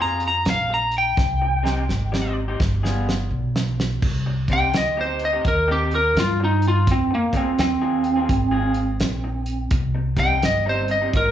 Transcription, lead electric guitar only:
0.02 0.23 A#5 medium
0.28 0.48 A#5 medium
0.50 0.71 F5 medium
0.74 0.95 A#5 medium
0.98 2.34 G5 medium
4.53 4.74 G5 medium
4.77 4.98 D#5 medium
5.01 5.22 C5 medium
5.25 5.46 D#5 medium
5.48 5.69 A#4 medium
5.72 5.93 G4 medium
5.95 6.17 A#4 medium
6.20 6.41 F4 medium
6.44 6.65 D#4 medium
6.68 6.89 F4 medium
6.91 7.12 C4 medium
7.15 7.36 A#3 medium
7.37 7.59 C4 medium
7.60 9.69 C4 loud
10.20 10.43 G5 medium
10.45 10.67 D#5 medium
10.69 10.91 C5 medium
10.91 11.14 D#5 medium
11.17 11.31 A#4 medium

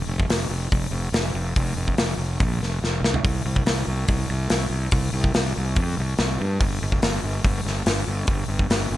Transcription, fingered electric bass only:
0.07 0.26 F1 medium
0.29 0.47 F1 medium
0.49 0.68 F1 medium
0.73 0.90 F1 medium
0.91 1.09 F1 medium
1.12 1.31 F1 medium
1.34 1.52 F1 medium
1.57 1.74 F1 medium
1.76 1.94 F1 medium
1.98 2.16 F1 medium
2.17 2.36 F1 medium
2.40 2.58 A#1 medium
2.61 2.79 F1 medium
2.82 3.00 F1 medium
3.02 3.20 C2 medium
3.24 3.42 C2 loud
3.45 3.63 C2 medium
3.66 3.84 C2 medium
3.87 4.05 C2 medium
4.08 4.26 C2 medium
4.29 4.47 C2 medium
4.51 4.68 C2 medium
4.70 4.88 C2 medium
4.92 5.10 C2 loud
5.13 5.31 C2 medium
5.36 5.53 C2 medium
5.57 5.74 C2 medium
5.77 5.94 F2 medium
5.97 6.15 C2 medium
6.18 6.36 C2 medium
6.41 6.58 G2 loud
6.60 6.78 G1 medium
6.82 6.99 G1 loud
7.02 7.20 G1 medium
7.24 7.41 G1 medium
7.45 7.62 G1 medium
7.65 7.82 G1 medium
7.86 8.04 G1 medium
8.07 8.25 G1 medium
8.28 8.45 G1 medium
8.48 8.66 G1 medium
8.70 8.88 G1 medium
8.90 8.97 G1 medium

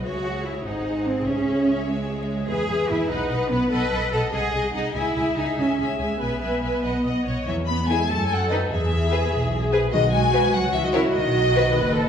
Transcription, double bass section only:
0.05 0.65 C#2 soft
0.66 1.26 G#1 medium
1.27 2.49 C#2 medium
2.48 2.56 E2 medium
2.68 2.76 E2 medium
2.89 2.97 E2 medium
3.10 3.18 B1 medium
3.30 3.38 B1 medium
3.50 3.58 B1 medium
3.71 3.79 B1 medium
3.92 4.00 B1 medium
4.12 4.20 B1 medium
4.32 4.40 C2 medium
4.53 4.61 C2 medium
4.73 4.81 C2 medium
4.95 5.03 C#2 medium
5.16 5.24 C#2 medium
5.36 5.44 C#2 soft
5.57 5.65 C#2 medium
5.79 5.87 C#2 soft
5.99 6.07 C#2 soft
6.21 6.29 B1 soft
6.42 6.50 B1 soft
6.62 6.70 B1 soft
6.84 6.92 B1 soft
7.04 7.12 B1 soft
7.26 7.34 B1 soft
7.47 7.99 E2 medium
8.09 8.60 F#2 medium
8.70 9.21 E2 medium
9.31 9.82 B1 medium
9.93 10.44 B1 medium
10.54 11.04 C#2 medium
11.15 11.65 B1 medium
11.75 12.09 F#1 medium

